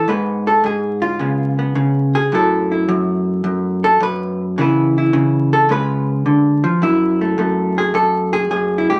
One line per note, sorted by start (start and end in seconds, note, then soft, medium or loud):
0.08 0.63 G#2 medium
0.08 1.18 G#3 soft
0.08 1.18 B3 soft
0.08 0.46 B4 medium
0.47 0.63 A4 medium
0.64 1.17 G#2 medium
0.64 1.03 G#4 medium
1.02 1.75 F4 medium
1.19 1.74 C#3 medium
1.19 2.30 G#3 soft
1.19 1.57 B3 soft
1.59 2.30 B3 soft
1.75 2.29 C#3 medium
2.15 2.32 G#4 medium
2.32 2.87 F#2 medium
2.32 4.55 F#3 soft
2.32 4.57 A3 soft
2.32 2.70 E4 medium
2.32 2.72 A4 medium
2.72 4.55 E4 soft
2.88 3.43 F#2 medium
3.44 3.99 F#2 medium
3.84 4.01 A4 loud
4.00 4.56 F#2 medium
4.00 4.40 B4 loud
4.58 5.12 C#3 medium
4.58 5.70 E3 soft
4.58 5.68 B3 medium
4.58 4.97 E4 medium
4.58 5.53 B4 medium
4.98 5.68 E4 medium
5.13 5.67 C#3 medium
5.53 5.70 A4 medium
5.69 6.25 C#3 medium
5.69 6.63 G#3 soft
5.69 6.80 B3 soft
5.69 6.80 F4 soft
5.69 6.09 B4 medium
6.26 6.64 D3 medium
6.64 6.81 F3 medium
6.82 7.37 F#2 medium
6.82 8.34 E4 medium
7.21 7.38 A3 soft
7.38 7.93 F#2 medium
7.38 9.00 A3 soft
7.78 7.94 G#4 medium
7.94 8.50 F#2 medium
7.94 8.33 A4 medium
8.33 8.49 G#4 medium
8.51 8.89 F#2 medium
8.51 9.00 G#4 medium
8.78 8.88 E4 medium
8.90 9.00 G#2 medium
8.90 9.00 G4 medium